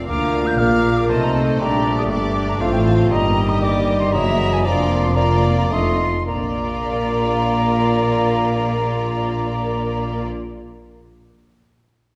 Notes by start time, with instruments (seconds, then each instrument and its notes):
0.06 double bass section D2, cello section D3, viola section A#3, french horn section A#3 F4, bassoon A#3, violin section A#4 F5, cor anglais F5, flute D6
0.47 flute G6
0.58 double bass section A#1, cello section A#2, viola section A#3, bassoon A#3, violin section A#4 F5, cor anglais D5, flute F6
0.97 flute D6
1.09 double bass section C2, cello section C3, french horn section A3 D#4, bassoon A3, viola section C4, violin section A4 D#5, cor anglais C5, flute A5
1.23 flute A#5
1.34 flute A5
1.59 double bass section A#1, cello section A#2, french horn section G3 D4, viola section D4, violin section G4 D5, cor anglais D5, flute A#5
1.98 flute D#6
2.09 double bass section G1, cello section G2, viola section D4, violin section G4 D5, cor anglais D5, flute D6
2.49 flute A#5
2.60 double bass section A1, cello section A2, french horn section F3 F4, bassoon A3, viola section C4, violin section F4 F5, cor anglais C5, flute F5
2.73 flute G5
2.85 flute A5
3.10 double bass section G1, cello section G2, french horn section D#3 G4, bassoon G3, viola section A#3, violin section G4 D#5, cor anglais D#5, flute A#5
3.49 flute D#6
3.61 bassoon G3, cor anglais D5, flute D6
4.00 flute C6
4.12 double bass section F#1, cello section F#2, french horn section E3, bassoon F#3, viola section A#3, violin section E4 E5, cor anglais D#5, flute A#5
4.16 french horn section F#4
4.53 flute G#5
4.65 double bass section F1, cello section F2, french horn section F3 D4, bassoon F3, viola section A#3, violin section F4 D5, cor anglais D5, flute A#5
5.03 flute C6
5.15 viola section A#3, bassoon A#3, violin section F4 D5, cor anglais D5, flute A#5
5.58 flute A#5
5.70 double bass section F1, cello section F2, viola section A3, french horn section A3 D#4, bassoon A3, violin section F4 D#5, cor anglais D#5, flute C6
6.26 double bass section A#1, cello section A#2, french horn section A#3 D4, viola section A#3, bassoon A#3, violin section F4 D5, cor anglais D5, flute A#5